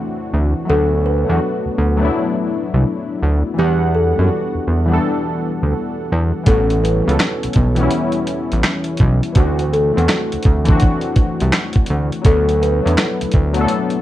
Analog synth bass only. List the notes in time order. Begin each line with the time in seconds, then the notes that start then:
0.33 D2
0.70 D2
1.29 E2
1.66 D2
1.78 D2
2.74 C2
3.23 D2
3.59 E2
4.19 F#2
4.55 E2
4.67 E2
5.63 D2
6.12 E2
6.47 A1
7.08 C#2
7.44 B1
7.56 B1
8.52 A1
9.01 B1
9.36 D2
9.97 E2
10.33 D2
10.46 D2
11.41 C2
11.90 D2
12.26 D2
12.86 E2
13.22 D2
13.35 D2